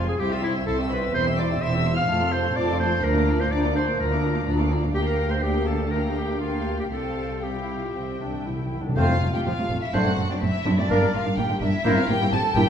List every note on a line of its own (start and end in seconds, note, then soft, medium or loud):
0.00 0.14 F1 medium
0.00 0.13 F2 medium
0.07 0.19 C4 soft
0.07 0.19 G#4 soft
0.07 0.21 G#4 medium
0.07 0.19 F5 soft
0.07 0.19 G#5 soft
0.07 0.12 G#5 medium
0.19 0.61 C2 medium
0.19 0.30 E4 medium
0.19 0.34 G4 medium
0.19 0.30 C5 soft
0.19 0.30 E5 soft
0.19 0.31 G5 medium
0.19 0.30 C6 soft
0.30 0.43 C4 soft
0.30 0.43 F4 medium
0.30 0.43 E5 soft
0.30 0.43 F5 medium
0.30 0.43 G5 soft
0.30 0.43 E6 soft
0.42 0.55 E4 medium
0.42 0.54 E4 medium
0.42 0.55 C5 soft
0.42 0.66 E5 medium
0.42 0.55 E5 soft
0.42 0.55 C6 medium
0.54 0.66 C4 medium
0.54 0.66 E5 medium
0.54 0.66 G5 medium
0.54 0.66 E6 soft
0.66 1.08 C2 medium
0.66 0.77 E4 soft
0.66 0.77 A4 medium
0.66 0.77 C5 soft
0.66 0.78 E5 medium
0.66 0.74 A5 medium
0.66 0.78 C6 medium
0.78 0.90 C4 medium
0.78 0.90 E5 soft
0.78 0.90 G5 medium
0.78 0.90 E6 soft
0.90 1.03 E4 soft
0.90 1.14 B4 medium
0.90 1.03 C5 medium
0.90 1.02 E5 medium
0.90 0.98 B5 medium
0.90 1.02 C6 soft
1.02 1.14 C4 medium
1.02 1.14 E5 medium
1.02 1.15 G5 soft
1.02 1.15 E6 soft
1.13 1.56 E1 medium
1.13 1.56 E2 medium
1.13 1.26 E4 medium
1.13 1.25 C5 medium
1.13 1.26 C5 medium
1.13 1.26 E5 medium
1.13 1.37 C6 medium
1.13 1.26 C6 medium
1.27 1.39 C4 medium
1.27 1.38 E5 medium
1.27 1.39 G5 soft
1.27 1.39 E6 soft
1.37 1.50 E4 medium
1.37 1.50 C5 medium
1.37 1.63 D5 medium
1.37 1.50 E5 medium
1.37 1.50 C6 soft
1.37 1.45 D6 medium
1.50 1.62 C4 soft
1.50 1.62 E5 medium
1.50 1.62 G5 medium
1.50 1.62 E6 medium
1.60 2.03 E1 medium
1.60 2.03 E2 medium
1.60 1.73 E4 medium
1.60 1.73 C5 medium
1.60 1.96 E5 loud
1.60 1.73 E5 soft
1.60 1.73 C6 medium
1.60 1.96 E6 medium
1.73 1.85 C4 soft
1.73 1.85 E5 soft
1.73 1.86 G5 medium
1.73 1.86 E6 medium
1.85 1.97 E4 medium
1.85 1.97 C5 medium
1.85 1.97 E5 medium
1.85 1.97 C6 medium
1.96 2.09 C4 soft
1.96 2.09 E5 soft
1.96 2.34 F5 loud
1.96 2.09 G5 medium
1.96 2.09 E6 medium
1.96 2.32 F6 medium
2.08 2.51 F1 medium
2.08 2.50 F2 medium
2.08 2.20 A3 medium
2.08 2.20 F4 medium
2.08 2.20 C5 medium
2.08 2.20 A5 medium
2.21 2.33 C4 medium
2.21 2.33 A4 medium
2.21 2.33 F5 soft
2.21 2.33 C6 soft
2.32 2.44 A3 medium
2.32 2.44 F4 soft
2.32 2.57 C5 medium
2.32 2.45 C5 medium
2.32 2.45 A5 medium
2.32 2.56 C6 medium
2.44 2.56 C4 medium
2.44 2.57 A4 medium
2.44 2.56 F5 medium
2.44 2.56 C6 medium
2.56 2.98 F1 medium
2.56 2.98 F2 medium
2.56 2.68 A3 medium
2.56 2.68 F4 soft
2.56 2.67 C5 medium
2.56 2.79 D5 loud
2.56 2.67 A5 medium
2.56 2.79 D6 medium
2.68 2.80 C4 medium
2.68 2.80 A4 soft
2.68 2.80 F5 soft
2.68 2.80 C6 medium
2.80 2.92 A3 medium
2.80 2.92 F4 soft
2.80 3.05 C5 medium
2.80 2.92 C5 soft
2.80 2.92 A5 medium
2.80 3.03 C6 medium
2.92 3.04 C4 medium
2.92 3.04 A4 medium
2.92 3.04 F5 soft
2.92 3.04 C6 medium
3.03 3.46 D2 medium
3.03 3.15 D4 medium
3.03 3.15 F4 soft
3.03 3.42 A#4 medium
3.03 3.15 D5 medium
3.03 3.40 A#5 medium
3.03 3.15 A#5 medium
3.16 3.28 A#3 medium
3.16 3.27 D4 medium
3.16 3.28 F5 medium
3.16 3.28 D6 medium
3.27 3.39 D4 medium
3.27 3.40 F4 medium
3.27 3.40 D5 medium
3.27 3.40 A#5 medium
3.39 3.52 A#3 soft
3.39 3.51 D4 medium
3.39 3.53 C5 medium
3.39 3.52 F5 medium
3.39 3.45 C6 medium
3.39 3.51 D6 medium
3.51 3.93 D2 medium
3.51 3.94 D2 medium
3.51 3.63 D4 medium
3.51 3.63 F4 medium
3.51 3.75 D5 medium
3.51 3.63 D5 soft
3.51 3.63 A#5 medium
3.51 3.60 D6 medium
3.64 3.76 A#3 soft
3.64 3.75 D4 soft
3.64 3.76 F5 medium
3.64 3.76 D6 medium
3.76 3.87 D4 medium
3.76 3.88 F4 soft
3.76 3.99 C5 medium
3.76 3.88 D5 soft
3.76 3.88 A#5 soft
3.76 3.84 C6 medium
3.88 4.00 A#3 soft
3.88 3.99 D4 soft
3.88 4.00 F5 medium
3.88 4.00 D6 medium
3.99 4.40 D2 medium
3.99 4.41 D2 medium
3.99 4.11 D4 medium
3.99 4.11 F4 medium
3.99 4.45 A#4 medium
3.99 4.11 D5 soft
3.99 4.46 A#5 medium
3.99 4.11 A#5 medium
4.12 4.23 A#3 medium
4.12 4.22 D4 medium
4.12 4.23 F5 soft
4.12 4.23 D6 soft
4.23 4.34 D4 soft
4.23 4.35 F4 soft
4.23 4.35 D5 soft
4.23 4.35 A#5 medium
4.35 4.46 A#3 medium
4.35 4.46 D4 soft
4.35 4.46 F5 medium
4.35 4.46 D6 medium
4.46 4.89 D2 medium
4.46 4.58 D4 medium
4.46 4.58 F4 soft
4.46 4.57 D5 medium
4.46 4.57 A#5 medium
4.59 4.70 A#3 medium
4.59 4.69 D4 medium
4.59 4.70 F5 medium
4.59 4.70 D6 soft
4.70 4.81 D4 soft
4.70 4.82 F4 medium
4.70 4.82 D5 medium
4.70 4.82 A#5 soft
4.82 4.93 A#3 medium
4.82 4.94 D4 soft
4.82 4.94 F5 medium
4.82 4.94 D6 soft
4.94 6.87 D2 medium
4.94 5.39 A#3 soft
4.94 5.39 G4 medium
4.94 5.00 G4 medium
4.94 5.39 F5 medium
4.94 5.39 G5 medium
4.94 5.05 G5 medium
5.05 5.32 A#4 medium
5.05 5.29 A#5 medium
5.30 5.44 C5 medium
5.30 5.34 C6 medium
5.42 5.89 A#3 medium
5.42 5.68 G4 medium
5.42 5.89 G4 medium
5.42 5.89 F5 medium
5.42 5.65 G5 medium
5.42 5.89 G5 medium
5.65 5.90 A4 medium
5.65 5.90 A5 medium
5.90 6.39 A#3 medium
5.90 6.39 G4 medium
5.90 6.02 A#4 medium
5.90 6.39 F5 soft
5.90 6.39 G5 soft
5.90 6.15 A#5 medium
6.15 6.39 G4 medium
6.15 6.40 G5 medium
6.40 6.90 A#3 soft
6.40 6.77 F4 medium
6.40 6.89 G4 soft
6.40 6.90 F5 medium
6.40 6.78 F5 medium
6.40 6.90 G5 medium
6.79 6.85 G4 medium
6.79 6.91 G5 soft
6.90 7.92 C2 medium
6.90 7.92 C2 soft
6.90 7.41 C4 soft
6.90 7.41 G4 soft
6.90 7.44 A4 medium
6.90 7.41 F5 soft
6.90 7.41 G5 soft
6.90 7.42 A5 medium
7.42 7.48 C4 medium
7.42 8.46 G4 medium
7.42 7.93 F5 soft
7.42 7.92 G5 soft
7.42 8.44 G5 soft
7.56 7.81 E4 soft
7.82 7.94 F4 soft
7.94 8.74 C2 soft
7.94 8.01 C3 soft
7.94 8.19 C4 soft
7.94 8.76 E5 soft
7.94 8.74 G5 soft
8.02 8.09 C3 soft
8.10 8.17 C3 soft
8.18 8.25 C3 soft
8.18 8.46 D4 soft
8.26 8.33 C3 soft
8.34 8.40 C3 soft
8.42 8.49 C3 soft
8.46 8.80 E4 soft
8.50 8.56 C3 soft
8.58 8.64 C3 medium
8.65 8.72 C3 medium
8.73 8.80 C3 medium
8.81 8.88 C3 medium
8.81 8.97 D4 soft
8.89 8.96 C3 medium
8.96 9.01 F1 medium
8.96 9.01 F2 medium
8.96 9.66 F2 medium
8.96 9.01 A3 medium
8.96 9.14 A3 medium
8.96 9.14 C4 medium
8.96 9.01 F4 medium
8.96 9.31 F4 medium
8.96 9.13 C5 medium
8.96 9.34 F5 medium
8.96 9.31 F5 medium
9.09 9.14 F2 medium
9.09 9.14 F3 medium
9.09 9.14 C4 medium
9.21 9.26 F1 soft
9.21 9.26 F2 medium
9.21 9.26 C3 medium
9.21 9.26 A3 medium
9.33 9.38 F2 medium
9.33 9.39 A3 medium
9.33 9.39 F4 medium
9.33 9.45 G4 medium
9.33 9.45 G5 medium
9.33 9.40 G5 medium
9.45 9.50 F1 medium
9.45 9.50 F2 medium
9.45 9.51 F3 medium
9.45 9.51 C4 medium
9.45 9.82 F4 medium
9.45 9.81 F5 medium
9.45 9.83 F5 medium
9.58 9.62 F2 soft
9.58 9.63 C3 medium
9.58 9.63 A3 soft
9.70 9.75 F1 medium
9.70 9.75 F2 medium
9.70 9.75 A3 medium
9.70 9.75 F4 medium
9.82 9.94 E4 medium
9.82 9.93 E5 medium
9.82 9.94 E5 medium
9.93 9.99 F#1 medium
9.93 9.99 F#2 medium
9.93 10.10 A3 medium
9.93 10.11 A3 medium
9.93 9.99 C4 medium
9.93 10.10 D4 medium
9.93 10.11 D4 medium
9.93 9.99 D4 medium
9.93 10.30 F#4 medium
9.93 10.11 C5 medium
9.93 10.29 F#5 medium
9.93 10.32 F#5 medium
10.05 10.10 F#2 medium
10.05 10.11 A3 medium
10.05 10.11 C4 medium
10.18 10.23 F#1 medium
10.18 10.22 F#2 medium
10.18 10.23 F#3 medium
10.18 10.23 A3 soft
10.29 10.35 F#2 medium
10.29 10.34 C4 medium
10.29 10.34 D4 medium
10.29 10.42 D4 medium
10.29 10.41 D5 medium
10.29 10.43 D5 medium
10.41 10.47 F#1 medium
10.41 10.47 F#2 medium
10.41 10.46 A3 medium
10.41 10.46 C4 soft
10.41 10.77 E4 medium
10.41 10.77 E5 medium
10.41 10.80 E5 medium
10.65 10.71 F#1 medium
10.65 10.71 F#2 medium
10.65 10.70 C4 medium
10.65 10.70 D4 medium
10.77 10.83 F#2 medium
10.77 10.82 A3 medium
10.77 10.82 C4 medium
10.77 11.14 D4 medium
10.77 11.14 D5 medium
10.77 11.13 D5 medium
10.90 10.95 G1 medium
10.90 10.96 G2 medium
10.90 11.07 A#3 medium
10.90 10.95 A#3 medium
10.90 11.07 A#3 medium
10.90 10.94 D4 medium
10.90 11.06 D4 medium
10.90 11.07 D4 medium
10.90 11.07 A#4 medium
11.02 11.07 G2 medium
11.02 11.06 G3 soft
11.02 11.06 A#3 soft
11.13 11.19 G1 soft
11.13 11.19 G2 medium
11.13 11.19 D3 medium
11.13 11.19 G3 medium
11.13 11.21 F4 medium
11.13 11.38 F5 medium
11.25 11.31 G2 medium
11.25 11.30 A#3 medium
11.25 11.30 D4 medium
11.37 11.42 G1 medium
11.37 11.43 G2 medium
11.37 11.42 G3 medium
11.37 11.42 A#3 medium
11.37 11.61 G4 medium
11.37 11.61 G5 medium
11.37 11.45 G5 medium
11.49 11.55 G2 medium
11.49 11.54 D3 medium
11.49 11.54 G3 medium
11.61 11.66 G1 medium
11.61 11.67 G2 medium
11.61 11.66 A#3 medium
11.61 11.66 D4 medium
11.61 11.96 E4 medium
11.61 11.96 E5 medium
11.61 12.00 E5 medium
11.84 11.90 G1 medium
11.84 11.90 G2 medium
11.84 11.89 A#3 medium
11.84 12.02 A#3 medium
11.84 12.02 C4 medium
11.84 11.89 E4 medium
11.84 12.02 E4 medium
11.84 12.02 A#4 medium
11.84 12.01 C5 medium
11.97 12.02 G2 medium
11.97 12.02 G3 medium
11.97 12.02 C4 medium
11.97 12.09 F4 medium
11.97 12.09 F5 loud
11.97 12.10 F5 medium
12.09 12.14 G1 medium
12.09 12.14 G2 medium
12.09 12.13 E3 medium
12.09 12.13 A#3 medium
12.09 12.32 G4 medium
12.09 12.32 G5 loud
12.09 12.32 G5 medium
12.20 12.25 G2 medium
12.20 12.25 A#3 medium
12.20 12.25 E4 medium
12.31 12.37 G1 medium
12.31 12.37 G2 medium
12.31 12.37 G3 medium
12.31 12.36 C4 medium
12.31 12.55 A4 loud
12.31 12.55 A5 medium
12.31 12.58 A5 medium
12.55 12.60 G1 medium
12.55 12.61 G2 medium
12.55 12.60 A#3 medium
12.55 12.60 E4 medium
12.55 12.69 G4 medium
12.55 12.69 G5 loud
12.55 12.69 G5 medium